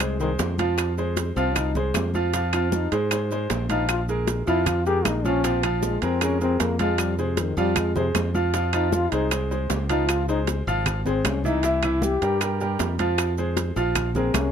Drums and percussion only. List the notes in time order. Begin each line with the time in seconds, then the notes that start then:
0.00 high bongo, high conga, high timbale, claves, maracas
0.20 high bongo, high conga, maracas
0.39 high bongo, low bongo, high conga, high timbale, low timbale, maracas
0.58 high bongo, high conga, high timbale, maracas
0.78 high bongo, high conga, high timbale, claves, maracas
0.97 high conga, maracas
1.17 high bongo, high conga, high timbale, low timbale, maracas
1.36 high bongo, high conga, maracas
1.56 high bongo, high conga, low conga, high timbale, claves, maracas
1.75 high bongo, high conga, low conga, maracas
1.94 high bongo, low bongo, high conga, high timbale, low timbale, claves, maracas
2.14 high bongo, high conga, maracas
2.33 high bongo, high conga, high timbale, maracas
2.53 high bongo, high conga, high timbale, claves, maracas
2.72 high bongo, high conga, low timbale, maracas
2.92 high conga, high timbale, maracas
3.11 high bongo, high conga, high timbale, claves, maracas
3.31 high bongo, high conga, maracas
3.50 high bongo, low bongo, high conga, high timbale, low timbale, maracas
3.69 high bongo, high conga, high timbale, maracas
3.89 high bongo, high conga, high timbale, claves, maracas
4.08 high conga, maracas
4.27 high bongo, high conga, high timbale, low timbale, maracas
4.47 high bongo, high conga, maracas
4.66 high bongo, high conga, low conga, high timbale, claves, maracas
4.85 high bongo, high conga, maracas
5.05 high bongo, low bongo, high conga, high timbale, low timbale, claves, maracas
5.25 high bongo, high conga, maracas
5.44 high bongo, high conga, high timbale, maracas
5.63 high bongo, high conga, high timbale, claves, maracas
5.83 high bongo, high conga, low timbale, maracas
6.02 high conga, high timbale, maracas
6.21 high bongo, high conga, high timbale, claves, maracas
6.41 high bongo, high conga, maracas
6.60 high bongo, low bongo, high conga, high timbale, low timbale, maracas
6.79 high bongo, high conga, high timbale, maracas
6.98 high bongo, high timbale, claves, maracas
7.18 high conga, maracas
7.37 high bongo, high conga, high timbale, low timbale, maracas
7.57 high bongo, high conga, maracas
7.76 high bongo, high conga, low conga, high timbale, claves, maracas
7.95 high bongo, high conga, low conga, maracas
8.15 high bongo, low bongo, high conga, high timbale, low timbale, claves, maracas
8.34 high bongo, high conga, maracas
8.54 high bongo, high conga, high timbale, maracas
8.73 high bongo, high conga, high timbale, claves, maracas
8.92 high bongo, high conga, low timbale, maracas
9.12 high conga, high timbale, maracas
9.31 high bongo, high conga, high timbale, claves, maracas
9.51 high bongo, high conga, maracas
9.70 high bongo, low bongo, high conga, high timbale, low timbale, maracas
9.89 high bongo, high conga, high timbale, maracas
10.09 high bongo, high conga, high timbale, claves, maracas
10.28 high conga, maracas
10.47 high bongo, high conga, high timbale, low timbale, maracas
10.67 high bongo, high conga, maracas
10.86 high bongo, high conga, low conga, high timbale, claves, maracas
11.06 high bongo, high conga, low conga, maracas
11.24 high bongo, low bongo, high conga, high timbale, low timbale, claves, maracas
11.44 high bongo, high conga, maracas
11.63 high bongo, high conga, high timbale, maracas
11.83 high bongo, high conga, high timbale, claves, maracas
12.02 high bongo, high conga, low timbale, maracas
12.22 high conga, high timbale, maracas
12.41 high bongo, high conga, high timbale, claves, maracas
12.61 high bongo, high conga, maracas
12.79 high bongo, low bongo, high conga, high timbale, low timbale, maracas
12.99 high bongo, high conga, high timbale, maracas
13.18 high bongo, high conga, high timbale, claves, maracas
13.38 high conga, maracas
13.57 high bongo, high conga, high timbale, low timbale, maracas
13.76 high bongo, high conga, maracas
13.95 high bongo, high conga, low conga, high timbale, claves, maracas
14.15 high bongo, high conga, low conga, maracas
14.34 high bongo, low bongo, high conga, high timbale, low timbale, claves, maracas